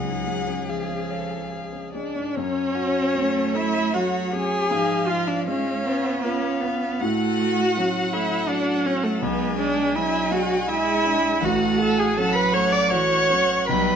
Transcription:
Already playing: C#2 F#3 G#4 F#5
0.05 G#2
0.27 G#3
0.47 C#4
0.69 F3 G#4 F5
0.89 C#4
1.10 A4 C#5
1.30 G#5
1.51 G#4
1.72 C#4
1.93 G#3 D4 D5
2.15 G#2
2.35 F#2 C#4 C#5
2.75 F#4
3.15 A3 C#4
3.54 A3 E4 E5
3.94 F#3 F#4 C#5 F#5
4.33 C#4 G#4 G#5
4.70 G#2 F3 F5
5.07 F4 F5
5.27 D4 D5
5.47 G#3 C#4 C#5 F5
5.85 B3
6.22 B3 C#4 F4 B4 F5
6.61 B3 C#4
7.00 A2 A3 F#4 F#5
7.40 F#4
7.77 F#3 C#4
8.13 A3 E4 E5
8.48 F#3 D4 F#4 D5
8.86 C#4 C#5
9.03 A3 A4
9.22 B1 G#3 B3 B4 G#5
9.58 D4 G#4 D5
9.94 F#3 D4 E4 E5
10.31 G#3 F#4 F#5
10.68 G#3 E4 G#4 E5
11.04 D4
11.41 A1 A3 F#4 F#5
11.79 F#4 A4 A5
11.97 G#4 G#5
12.15 F#3 C#4 A4 F#5 A5
12.33 B4 B5
12.52 A3 C#5 C#6
12.71 D5 D6
12.88 F#4 C#5 F#5 C#6
12.93 E3
13.30 F#3 C#4
13.66 B1 B4 B5
13.70 G3 G5

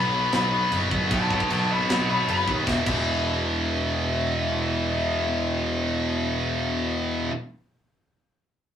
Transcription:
Already playing: B1 B2 F#3 B3 B5
0.13 B2 F#3 B3
0.32 B1 B2 F#3 B3 B5, snare, china
0.52 B2 F#3 B3
0.71 F#1 B2 F#3 B3, china
0.91 F#1 B2 F#3 B3, kick
1.10 B1 B2 F#3 B3 F#5 A5, kick, china
1.29 B2 F#3 B3 F#5, kick
1.34 A5
1.40 kick
1.50 B1 B2 F#3 B3 F#5 A5, china
1.70 B2 F#3 B3 D#5 B5
1.89 B1 B2 F#3 B3 D#5 B5, snare, china
2.09 B2 F#3 B3 D#5 B5
2.28 F#1 B2 F#3 B3 B5, china
2.47 D#2 B2 F#3 B3, kick
2.66 E1 E2 B2, kick, snare
2.70 E3
2.85 E1 E2 B2 E3, kick, crash

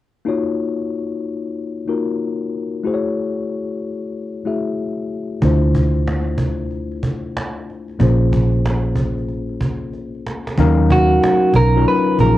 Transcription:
0.25 A#3 D#4 F4 F#4 C#5
1.87 A#3 D#4 F4 F#4 A#4
2.83 A3 E4 F#4 G#4 C5
2.94 C#5
4.45 A3 E4 F#4 G#4 E5
5.42 D2 A3 D4 E4 F4 C5, cajon bass
5.63 cajon slap
5.75 cajon bass
5.94 cajon slap
6.07 cajon slap
6.24 cajon slap
6.38 cajon bass
6.60 cajon slap
6.71 cajon slap
6.92 cajon slap
7.03 cajon bass, cajon slap
7.23 cajon slap
7.37 cajon slap
7.57 cajon slap
7.70 cajon slap
7.88 cajon slap
7.99 A#1 A#3 C#4 F4 G#4 C5, cajon bass
8.22 cajon slap
8.33 cajon bass
8.52 cajon slap
8.66 cajon slap
8.82 cajon slap
8.96 cajon bass
9.18 cajon slap
9.28 cajon slap
9.49 cajon slap
9.61 cajon bass, cajon slap
9.81 cajon slap
9.93 cajon slap
10.15 cajon slap
10.27 cajon slap
10.47 cajon slap
10.58 D#2 F#3 C#4 D#4 A#4 F5, cajon bass
10.79 cajon slap
10.90 F#4, cajon bass
11.10 cajon slap
11.24 cajon slap
11.40 cajon slap
11.54 B1 A#4, cajon bass
11.76 F#3 C#4 D#4 F4 A#4, cajon slap
11.87 B4, cajon slap
12.07 cajon slap
12.19 A#1 F#3 C#4 D#4 F4 G#4 A#4, cajon bass, cajon slap

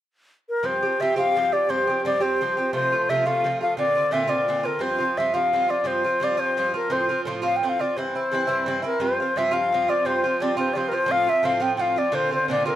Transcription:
0.49 A#4
0.63 G2 F3 C4 G4 C5
0.83 F3 C4 G4
1.00 G2 F3 C4 G4 E5
1.16 G2 F3 C4 G4 F5
1.35 G2 F3 C4 G4
1.52 F3 C4 G4 D5
1.69 G2 F3 C4 G4 C5
1.87 F3 C4 G4
2.05 G2 F3 C4 G4 D5
2.20 G2 F3 C4 G4 C5
2.41 G2 F3 C4 G4
2.57 F3 C4 G4
2.73 C3 F3 A3 F4 C5
2.92 F3 A3 F4
3.09 C3 F3 A3 F4 E5
3.26 C3 F3 A3 F4 F5
3.44 C3 F3 A3 F4
3.61 F3 A3 F4 F5
3.77 A#2 D3 C4 F4 D5
3.95 D3 C4 F4
4.11 A#2 D3 C4 F4 E5
4.28 A#2 D3 C4 F4 D5
4.48 A#2 D3 C4 F4
4.63 D3 C4 F4 A#4
4.79 G2 F3 C4 F4 C5
4.98 F3 C4 F4
5.17 G2 F3 C4 F4 E5
5.34 G2 F3 C4 F4 F5
5.53 G2 F3 C4 F4
5.68 F3 C4 F4 D5
5.84 G2 F3 C4 F4 C5
6.04 F3 C4 F4
6.20 G2 F3 C4 F4 D5
6.37 G2 F3 C4 F4 C5
6.57 G2 F3 C4 F4
6.74 F3 C4 F4 A#4
6.90 A2 F3 C4 F4 C5
7.09 F3 C4 F4
7.25 A2 F3 C4 F4
7.42 A2 F3 C4 F4 F5
7.56 G5
7.63 A2 F3 C4 F4
7.69 F5
7.79 F3 C4 F4 D5
7.97 G2 E3 C4 E4 C5
8.15 E3 C4 E4
8.32 G2 E3 C4 E4
8.47 G2 E3 C4 E4
8.66 G2 E3 C4 E4
8.82 E3 C4 E4 A#4
9.00 G2 F3 C4 F4 C5
9.20 F3 C4 F4
9.36 G2 F3 C4 F4 E5
9.51 G2 F3 C4 F4 F5
9.73 G2 F3 C4 F4
9.88 F3 C4 F4 D5
10.05 G2 F3 C4 F4 C5
10.24 F3 C4 F4
10.40 G2 F3 C4 F4 D5
10.57 G2 F3 C4 F4 C5
10.73 G2 F3 C4 F4 C5 D5
10.89 F4 A#4
10.93 F3 C4 C5
11.06 A2 F3 C4 F4
11.11 F5
11.27 F3 C4 F4 E5
11.43 A2 F3 C4 F4 F5
11.60 A2 F3 C4 F4 G5
11.77 A2 F3 C4 F4 G5
11.81 F5
11.96 F3 C4 F4 D5
12.12 A#2 D3 C4 F4 C5
12.31 D3 C4 F4 C5
12.48 A#2 D3 C4 F4 D5
12.65 A#2 D3 C4 F4 A#4

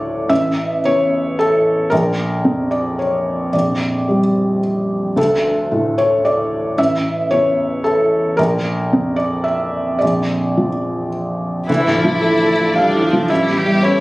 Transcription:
Already playing: D2 A2 A4 C#5 D5
0.29 A1 E5
0.85 E2 C#5
1.39 A4
1.90 A#1 A#4
2.45 F2
2.71 D5
2.99 C#5
3.53 A#1 D5
4.09 G3
5.16 D2 A4
5.71 A2
5.98 C#5
6.25 D5
6.78 A1 E5
7.31 E2 C#5
7.84 A4
8.37 A#1 A#4
8.93 F2
9.16 D5
9.44 E5
9.99 A#1 D5
10.57 F3
11.68 D2 E3 E4 A4 D5
11.87 A2
11.95 F3
12.04 F3
12.21 A3 E4 A4
12.41 A4
12.59 F4
12.75 G3 D4 A4 F5
12.94 E4
13.02 F3
13.13 F3
13.30 A1 G3 E4 G4 C#5 E5
13.48 E2
13.57 G4
13.66 G3
13.83 A3 C#4 E4 C#5

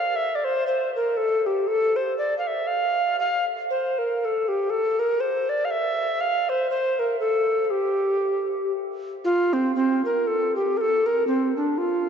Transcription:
Already playing: F5
0.16 E5
0.35 D5
0.44 C5
0.67 C5
0.96 A#4
1.17 A4
1.46 G4
1.67 A4
1.96 C5
2.18 D5
2.38 F5
2.47 E5
2.67 F5
3.20 F5
3.70 C5
3.98 A#4
4.21 A#4
4.25 A4
4.48 G4
4.70 A4
4.99 A#4
5.20 C5
5.49 D5
5.65 F5
5.71 E5
6.21 F5
6.49 C5
6.70 C5
6.99 A#4
7.20 A4
7.65 A4
7.71 G4
9.25 F4
9.53 C4
9.76 C4
10.05 A#4
10.27 A4
10.56 G4
10.77 A4 A#4
11.06 A#4
11.27 C4
11.57 D4
11.78 F4

